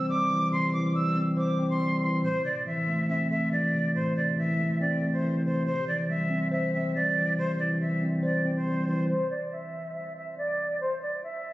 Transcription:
0.00 0.52 C3 medium
0.00 0.31 E3 medium
0.00 0.09 G3 medium
0.00 1.16 C4 medium
0.00 0.73 C5 loud
0.09 0.93 G3 medium
0.09 0.50 D6 loud
0.31 0.72 E3 medium
0.52 1.59 C3 medium
0.52 0.71 C6 loud
0.73 1.81 E3 medium
0.73 0.92 D6 medium
0.95 1.80 G3 medium
0.95 1.19 E6 loud
1.16 1.58 C4 medium
1.37 2.23 C5 loud
1.37 1.68 D6 medium
1.59 2.24 C4 medium
1.70 2.00 C6 medium
1.81 2.24 G3 medium
2.02 2.24 E3 medium
2.02 2.21 C6 medium
2.23 3.30 A2 medium
2.23 2.42 C5 loud
2.45 3.52 C3 medium
2.45 2.64 D5 medium
2.66 3.51 E3 medium
2.66 3.07 E5 medium
2.88 3.30 A3 medium
3.09 4.17 C4 medium
3.09 3.28 E5 medium
3.31 4.38 A3 medium
3.31 3.49 E5 medium
3.52 4.36 E3 medium
3.52 3.92 D5 medium
3.74 4.15 C3 medium
3.95 5.02 A2 medium
3.95 4.14 C5 loud
4.16 5.23 C3 medium
4.16 4.35 D5 medium
4.38 5.22 E3 medium
4.38 4.78 E5 medium
4.59 5.01 A3 medium
4.81 5.66 C4 loud
4.81 5.11 D5 medium
5.02 5.66 A3 medium
5.13 5.43 C5 medium
5.23 5.66 E3 medium
5.45 5.65 C3 medium
5.45 5.64 C5 medium
5.66 6.74 C3 medium
5.66 5.85 C5 loud
5.88 6.95 E3 medium
5.88 6.06 D5 medium
6.09 6.94 G3 medium
6.09 6.49 E5 medium
6.30 6.73 C4 medium
6.51 7.59 C5 loud
6.51 6.71 E5 medium
6.73 7.81 C4 medium
6.73 6.92 E5 medium
6.95 7.79 G3 medium
6.95 7.35 D5 loud
7.16 7.58 E3 medium
7.38 8.45 C3 medium
7.38 7.56 C5 loud
7.59 8.66 E3 medium
7.59 7.78 D5 medium
7.80 8.65 G3 medium
7.80 8.04 E5 medium
8.02 8.44 C4 medium
8.23 9.09 C5 loud
8.23 8.54 D5 medium
8.45 9.09 C4 medium
8.55 8.86 C5 medium
8.67 9.09 G3 medium
8.88 9.09 E3 medium
8.88 9.07 C5 medium
9.09 9.28 C5 loud
9.31 9.49 D5 medium
9.52 9.92 E5 medium
9.95 10.14 E5 medium
10.16 10.35 E5 medium
10.38 10.78 D5 loud
10.81 10.99 C5 loud
11.02 11.21 D5 medium
11.23 11.53 E5 medium

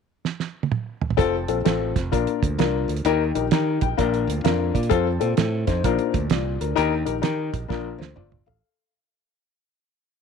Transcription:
0.25 snare medium
0.40 snare soft
0.63 high tom medium
0.72 mid tom medium
1.01 floor tom medium
1.10 floor tom medium
1.17 1.45 F1 medium
1.17 1.34 C4 loud
1.17 1.34 F4 medium
1.17 1.34 A4 loud
1.17 kick loud
1.17 closed hi-hat medium
1.48 1.63 A#1 medium
1.48 1.57 C4 medium
1.48 1.57 F4 medium
1.48 1.57 A4 medium
1.48 closed hi-hat medium
1.65 1.92 A1 medium
1.65 1.96 C4 medium
1.65 1.96 F4 medium
1.65 1.96 A4 medium
1.65 snare loud
1.65 closed hi-hat medium
1.96 2.10 F1 medium
1.96 kick medium
1.96 snare soft
1.96 closed hi-hat medium
2.12 2.25 A#1 medium
2.12 2.85 A#2 medium
2.12 2.43 D4 medium
2.12 2.43 F4 medium
2.12 2.43 A#4 medium
2.12 kick medium
2.12 closed hi-hat medium
2.27 muted fingered electric bass stroke soft
2.27 closed hi-hat soft
2.43 2.57 D2 medium
2.43 kick medium
2.43 closed hi-hat medium
2.58 2.85 C2 medium
2.58 2.90 D4 medium
2.58 2.90 F4 medium
2.58 2.90 A#4 medium
2.58 snare loud
2.58 closed hi-hat medium
2.88 3.03 D2 medium
2.88 closed hi-hat medium
2.97 closed hi-hat medium
3.05 3.31 D#2 loud
3.05 3.78 D#3 medium
3.05 3.21 D#4 loud
3.05 3.21 G4 medium
3.05 3.22 A#4 loud
3.05 closed hi-hat medium
3.35 3.50 A#1 medium
3.35 3.44 D#4 medium
3.35 3.44 G4 medium
3.35 3.44 A#4 medium
3.35 closed hi-hat medium
3.51 3.78 D#3 medium
3.51 3.83 D#4 medium
3.51 3.83 G4 medium
3.51 3.83 A#4 medium
3.51 snare loud
3.51 closed hi-hat medium
3.81 3.96 A#1 medium
3.81 3.98 G5 medium
3.81 kick loud
3.81 closed hi-hat medium
3.97 4.24 A#1 medium
3.97 4.71 A#2 medium
3.97 4.29 D4 medium
3.97 4.29 F4 medium
3.97 4.29 A#4 medium
3.97 4.41 F5 medium
3.97 kick medium
3.97 closed hi-hat medium
4.14 closed hi-hat soft
4.27 4.42 D2 medium
4.27 closed hi-hat medium
4.44 4.71 F2 medium
4.44 4.75 D4 medium
4.44 4.76 F4 medium
4.44 4.76 A#4 medium
4.44 4.73 F5 medium
4.44 snare loud
4.44 closed hi-hat medium
4.74 4.89 A#2 medium
4.74 4.90 D5 medium
4.74 kick medium
4.74 closed hi-hat medium
4.83 closed hi-hat medium
4.89 5.17 F2 medium
4.89 5.06 C4 loud
4.89 5.06 F4 loud
4.89 5.06 A4 loud
4.89 kick loud
4.89 closed hi-hat medium
5.20 5.36 A#2 medium
5.20 5.29 C4 medium
5.20 5.30 F4 medium
5.20 5.30 A4 medium
5.20 closed hi-hat medium
5.37 5.64 A2 medium
5.37 5.67 C4 medium
5.37 5.66 A4 medium
5.37 snare loud
5.37 closed hi-hat medium
5.67 5.82 F2 medium
5.67 6.12 D#4 medium
5.67 6.12 C5 medium
5.67 kick medium
5.67 snare soft
5.67 closed hi-hat medium
5.84 5.97 A#1 loud
5.84 6.57 A#2 medium
5.84 6.15 D4 medium
5.84 6.15 F4 medium
5.84 6.15 A#4 medium
5.84 kick medium
5.84 closed hi-hat medium
5.98 muted fingered electric bass stroke soft
5.98 closed hi-hat soft
6.14 6.28 D2 medium
6.14 kick medium
6.14 closed hi-hat medium
6.30 6.57 C2 medium
6.30 6.60 F4 soft
6.30 6.59 D5 medium
6.30 snare loud
6.30 closed hi-hat medium
6.61 6.75 D2 medium
6.61 7.05 D4 soft
6.61 6.75 A#4 medium
6.61 closed hi-hat medium
6.76 7.04 D#2 medium
6.76 7.49 D#3 medium
6.76 6.92 D#4 loud
6.76 6.92 G4 medium
6.76 6.92 A#4 loud
6.76 closed hi-hat medium
7.05 7.21 A#1 medium
7.05 7.15 D#4 medium
7.05 7.15 G4 medium
7.05 7.15 A#4 medium
7.05 closed hi-hat medium
7.22 7.49 D#3 medium
7.22 7.53 D#4 medium
7.22 7.53 G4 medium
7.22 7.53 A#4 medium
7.22 snare loud
7.22 closed hi-hat medium
7.54 7.68 A#1 medium
7.54 kick medium
7.54 closed hi-hat medium
7.68 7.96 A#1 medium
7.68 8.42 A#2 medium
7.68 8.00 D4 medium
7.68 7.99 F4 medium
7.68 8.00 A#4 medium
7.68 kick medium
7.68 snare medium
7.98 8.13 D2 medium
7.98 8.15 C5 medium
7.98 snare medium
8.16 8.42 G1 medium
8.16 8.44 F4 medium
8.16 8.45 D5 medium
8.16 mid tom medium
8.32 floor tom medium
8.46 8.61 A1 medium
8.46 8.91 A4 soft
8.46 8.91 F5 medium
8.46 floor tom medium

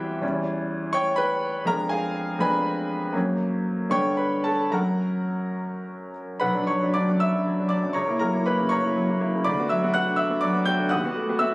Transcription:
0.00 0.21 E2 medium
0.00 0.22 G3 soft
0.00 0.24 C4 soft
0.00 0.24 E4 medium
0.00 0.25 F#4 medium
0.00 0.19 G4 medium
0.00 0.25 C5 medium
0.00 0.24 E5 medium
0.00 0.24 F#5 medium
0.00 0.23 G5 medium
0.21 1.63 E2 medium
0.21 1.63 G3 soft
0.21 1.64 C#4 medium
0.21 1.64 E4 soft
0.93 1.17 C#5 medium
0.93 1.16 G5 medium
0.93 1.18 C#6 loud
1.16 1.64 B4 medium
1.16 1.64 G5 medium
1.16 1.66 B5 loud
1.65 2.37 F2 medium
1.65 2.38 G#3 medium
1.65 2.39 B3 soft
1.65 2.39 D4 medium
1.65 1.90 A#4 medium
1.65 1.92 A#5 loud
1.89 2.38 G#4 medium
1.89 2.37 F5 medium
1.89 2.40 G#5 loud
2.39 3.11 F2 medium
2.39 3.12 G#3 medium
2.39 3.12 B3 medium
2.39 3.13 D4 medium
2.39 3.11 B4 medium
2.39 3.11 G#5 medium
2.39 3.14 B5 loud
3.12 3.89 F#2 medium
3.12 3.90 F#3 medium
3.12 3.90 A#3 medium
3.12 3.90 C#4 medium
3.89 4.70 G2 medium
3.89 4.70 D3 medium
3.89 4.71 B3 medium
3.89 4.17 C#5 medium
3.89 4.17 G5 medium
3.89 4.19 C#6 loud
4.17 4.44 B4 medium
4.17 4.45 B5 medium
4.44 4.72 A4 medium
4.44 4.73 A5 medium
4.71 6.36 F#2 medium
4.71 6.37 F#3 soft
4.71 6.37 C#4 soft
4.71 6.10 A#4 medium
4.71 6.10 F#5 medium
4.71 6.13 A#5 medium
6.40 6.55 B1 medium
6.40 6.66 B4 medium
6.40 6.66 F#5 medium
6.40 6.67 B5 medium
6.54 6.66 F#3 medium
6.54 6.67 D4 medium
6.67 6.81 F#3 medium
6.67 6.92 C#5 medium
6.67 6.93 C#6 medium
6.82 6.93 F#3 medium
6.82 6.94 D4 medium
6.94 7.06 F#3 medium
6.94 7.07 D4 medium
6.94 7.18 D5 medium
6.94 7.20 D6 loud
7.09 7.49 F#2 medium
7.20 7.67 E5 medium
7.20 7.71 E6 loud
7.34 7.45 F#3 soft
7.34 7.45 D4 soft
7.47 7.57 F#3 medium
7.59 7.69 F#3 soft
7.59 7.69 D4 medium
7.69 7.81 F#3 medium
7.69 7.82 D4 medium
7.69 7.93 D5 medium
7.69 7.94 D6 loud
7.83 7.96 F#2 medium
7.93 8.07 C#2 medium
7.93 8.18 C#5 medium
7.93 8.18 A#5 medium
7.93 8.19 C#6 medium
8.08 8.19 A#3 medium
8.08 8.19 E4 medium
8.19 8.41 F#3 medium
8.19 8.44 A#4 medium
8.19 8.45 A#5 medium
8.32 8.44 A#3 medium
8.32 8.44 E4 medium
8.46 8.57 A#3 medium
8.46 8.57 E4 medium
8.46 8.69 B4 medium
8.46 8.71 B5 medium
8.60 8.99 C#3 medium
8.69 9.41 C#5 medium
8.69 9.42 A#5 medium
8.69 9.45 C#6 loud
8.84 8.95 A#3 soft
8.84 8.95 E4 medium
8.96 9.16 F#3 medium
9.10 9.19 A#3 medium
9.10 9.20 E4 medium
9.21 9.32 A#3 medium
9.21 9.32 E4 medium
9.35 9.46 C#3 medium
9.44 9.57 D2 medium
9.44 9.68 D5 medium
9.44 9.68 B5 medium
9.44 9.69 D6 loud
9.59 9.70 B3 medium
9.59 9.70 F#4 medium
9.69 9.90 F#3 medium
9.69 9.93 E5 medium
9.69 9.94 E6 loud
9.83 9.93 B3 medium
9.83 9.94 F#4 medium
9.94 10.06 B3 medium
9.94 10.06 F#4 medium
9.94 10.17 F#5 medium
9.94 10.18 F#6 loud
10.06 10.45 D3 medium
10.16 10.40 E5 medium
10.16 10.42 E6 loud
10.30 10.41 B3 medium
10.30 10.41 F#4 medium
10.41 10.62 F#3 medium
10.41 10.64 D5 medium
10.41 10.66 D6 loud
10.54 10.65 B3 medium
10.54 10.65 F#4 medium
10.66 10.77 B3 medium
10.66 10.78 F#4 medium
10.66 10.89 G5 medium
10.66 10.90 G6 loud
10.79 10.91 D3 medium
10.89 11.02 D#1 medium
10.89 11.03 D#2 medium
10.89 11.36 F#5 medium
10.89 11.36 D#6 medium
10.89 11.39 F#6 medium
11.05 11.15 B3 medium
11.05 11.15 F#4 medium
11.16 11.35 A3 medium
11.29 11.39 B3 medium
11.29 11.39 F#4 medium
11.39 11.51 B3 medium
11.39 11.51 F#4 medium
11.39 11.54 E5 medium
11.39 11.54 E6 loud

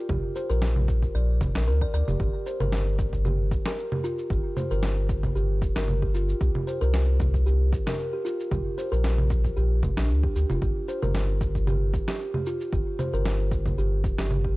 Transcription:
0.09 0.18 A#1 loud
0.09 0.23 G4 medium
0.09 kick loud
0.09 low conga medium
0.09 cabasa soft
0.36 0.49 C5 medium
0.36 cabasa medium
0.50 1.08 A#1 medium
0.50 0.57 A#4 loud
0.50 cabasa soft
0.62 snare medium
0.62 cabasa soft
0.76 low conga medium
0.88 kick loud
0.88 cabasa medium
1.02 kick medium
1.02 cabasa soft
1.15 1.40 A#1 medium
1.15 1.28 D5 medium
1.15 cabasa soft
1.41 1.50 F1 medium
1.41 kick loud
1.41 low conga medium
1.41 cabasa medium
1.55 1.69 A#1 loud
1.55 1.62 A#4 medium
1.55 snare medium
1.55 cabasa soft
1.67 1.85 D2 medium
1.67 1.80 A#4 medium
1.67 cabasa soft
1.81 1.89 D5 loud
1.81 kick medium
1.94 2.03 D2 medium
1.94 2.02 D5 loud
1.94 cabasa medium
2.08 2.15 F1 loud
2.08 2.19 G4 medium
2.08 low conga medium
2.08 cabasa soft
2.20 2.29 G1 loud
2.20 2.34 G4 medium
2.20 kick loud
2.20 cabasa soft
2.46 2.60 C5 medium
2.46 cabasa medium
2.60 3.57 G1 medium
2.60 2.67 A#4 medium
2.60 low conga medium
2.60 cabasa soft
2.72 snare medium
2.72 cabasa soft
2.99 kick loud
2.99 cabasa medium
3.13 kick medium
3.13 cabasa soft
3.25 3.39 G4 medium
3.25 low conga medium
3.25 cabasa soft
3.51 kick loud
3.51 cabasa medium
3.66 3.73 A#4 loud
3.66 snare medium
3.66 cabasa soft
3.78 cabasa soft
3.92 3.99 G4 medium
3.92 low conga medium
4.04 4.29 F4 medium
4.04 cabasa medium
4.18 cabasa soft
4.30 4.39 G1 loud
4.30 4.44 G4 medium
4.30 kick loud
4.30 cabasa soft
4.57 4.70 C5 medium
4.57 low conga medium
4.57 cabasa medium
4.71 5.29 G1 medium
4.71 4.78 A#4 medium
4.71 cabasa soft
4.83 snare medium
4.83 cabasa soft
5.09 kick loud
5.09 cabasa medium
5.23 kick medium
5.23 low conga medium
5.23 cabasa soft
5.35 5.61 G1 medium
5.35 5.49 G4 medium
5.35 cabasa soft
5.62 5.71 F1 medium
5.62 kick loud
5.62 cabasa medium
5.76 6.34 G1 medium
5.76 5.83 A#4 medium
5.76 snare medium
5.76 cabasa soft
5.88 low conga medium
5.88 cabasa soft
6.02 6.09 G4 medium
6.02 kick medium
6.14 6.40 F4 medium
6.14 cabasa medium
6.29 cabasa soft
6.41 6.50 C2 loud
6.41 6.54 G4 medium
6.41 kick loud
6.41 cabasa soft
6.55 low conga medium
6.67 6.81 C5 medium
6.67 cabasa medium
6.81 7.78 C2 medium
6.81 6.88 A#4 loud
6.81 cabasa soft
6.94 snare medium
6.94 cabasa soft
7.20 kick loud
7.20 low conga medium
7.20 cabasa medium
7.34 kick medium
7.34 cabasa soft
7.46 7.60 G4 medium
7.46 cabasa soft
7.73 kick loud
7.73 cabasa medium
7.86 7.94 A#4 loud
7.86 snare medium
7.86 low conga medium
7.86 cabasa soft
7.99 cabasa soft
8.13 8.20 G4 medium
8.25 8.50 F4 medium
8.25 cabasa medium
8.40 cabasa soft
8.51 8.60 A#1 loud
8.51 8.65 G4 medium
8.51 kick loud
8.51 low conga medium
8.51 cabasa soft
8.78 8.91 C5 medium
8.78 cabasa medium
8.92 9.50 A#1 medium
8.92 8.99 A#4 loud
8.92 cabasa soft
9.04 snare medium
9.04 cabasa soft
9.18 low conga medium
9.30 kick loud
9.30 cabasa medium
9.45 kick medium
9.45 cabasa soft
9.57 9.83 A#1 medium
9.57 9.70 G4 medium
9.57 cabasa soft
9.83 9.92 F1 medium
9.83 kick loud
9.83 low conga medium
9.83 cabasa medium
9.97 10.11 A#1 loud
9.97 10.08 D4 medium
9.97 snare medium
9.97 cabasa soft
10.10 10.27 D2 medium
10.10 cabasa soft
10.23 10.35 G4 medium
10.23 kick medium
10.36 10.45 D2 medium
10.36 10.49 G4 medium
10.36 cabasa medium
10.50 10.58 F1 loud
10.50 10.61 F4 medium
10.50 low conga medium
10.50 cabasa soft
10.62 10.71 G1 loud
10.62 10.76 G4 medium
10.62 kick loud
10.62 cabasa soft
10.88 11.02 C5 medium
10.88 cabasa medium
11.02 11.99 G1 medium
11.02 11.09 A#4 loud
11.02 low conga medium
11.02 cabasa soft
11.15 snare medium
11.15 cabasa soft
11.41 kick loud
11.41 cabasa medium
11.55 kick medium
11.55 cabasa soft
11.67 11.81 G4 medium
11.67 low conga medium
11.67 cabasa soft
11.94 kick loud
11.94 cabasa medium
12.08 12.19 G4 medium
12.08 snare medium
12.08 cabasa soft
12.20 cabasa soft
12.34 12.41 G4 medium
12.34 low conga medium
12.46 12.72 F4 medium
12.46 cabasa medium
12.61 cabasa soft
12.73 12.82 G1 loud
12.73 12.86 G4 medium
12.73 kick loud
12.73 cabasa soft
12.99 13.13 C5 medium
12.99 low conga medium
12.99 cabasa medium
13.13 13.71 G1 medium
13.13 13.20 A#4 loud
13.13 cabasa soft
13.25 snare medium
13.25 cabasa soft
13.51 kick loud
13.51 cabasa medium
13.66 kick medium
13.66 low conga medium
13.66 cabasa soft
13.78 14.03 G1 medium
13.78 13.92 G4 medium
13.78 cabasa soft
14.04 14.13 F1 medium
14.04 kick loud
14.04 cabasa medium
14.18 14.57 G1 medium
14.18 14.30 G4 medium
14.18 snare medium
14.18 cabasa soft
14.31 low conga medium
14.31 cabasa soft
14.45 14.52 G4 medium
14.45 kick medium

